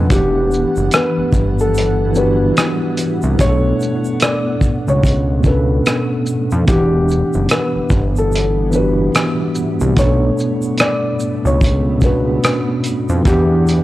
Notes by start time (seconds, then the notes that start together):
Already playing: B2 E3 B3 C#4 D4 B4 F#5
0.07 E1 E3 G3 B3 D4 E4, kick, closed hi-hat
0.11 G4 F#5, shaker
0.51 shaker
0.54 shaker
0.76 F#1, shaker
0.91 B4, cross-stick, closed hi-hat, shaker
1.18 G1
1.33 G1, kick, shaker
1.59 A4, shaker
1.74 closed hi-hat, shaker
2.12 E3 B3 D4, shaker
2.17 F#4 G4 B4
2.57 cross-stick, closed hi-hat, shaker
2.97 closed hi-hat, shaker
3.22 C2, shaker
3.36 B1 B2 A3 B3, kick, closed hi-hat, shaker
3.41 D4 G#4 C#5
3.49 A4
3.80 shaker
3.82 shaker
4.05 shaker
4.20 D5, cross-stick, closed hi-hat, shaker
4.61 kick, shaker
4.88 C#2 C#5, shaker
5.03 kick, closed hi-hat, shaker
5.41 B2 B3 C#4, kick, shaker
5.46 D4 A4 B4
5.86 cross-stick, closed hi-hat, shaker
6.26 shaker
6.51 F2, shaker
6.65 E1 E3 G3 B3 D4 E4, kick, closed hi-hat, shaker
6.69 G4 F#5
7.09 shaker
7.11 shaker
7.33 F#1, shaker
7.49 B4, cross-stick, closed hi-hat, shaker
7.76 G1
7.90 G1, kick, shaker
8.16 A4, shaker
8.32 closed hi-hat, shaker
8.70 E3 B3 D4, shaker
8.75 F#4 G4 B4
9.15 cross-stick, closed hi-hat, shaker
9.55 shaker
9.80 C2, shaker
9.93 B1 B2 A3 B3, kick, closed hi-hat, shaker
9.98 B2 A3 B3 D4 A4 C#5
10.38 shaker
10.40 shaker
10.62 shaker
10.78 D5, cross-stick, closed hi-hat, shaker
11.19 shaker
11.45 C#2 C#5, shaker
11.61 kick, closed hi-hat, shaker
11.99 B2 B3 C#4, kick, shaker
12.04 D4 F#4 B4
12.44 cross-stick, closed hi-hat, shaker
12.84 closed hi-hat, shaker
12.85 shaker
13.09 F2, shaker
13.22 E2 E3 B3 D4, kick, closed hi-hat
13.26 G4 F#5, shaker
13.67 closed hi-hat, shaker
13.69 shaker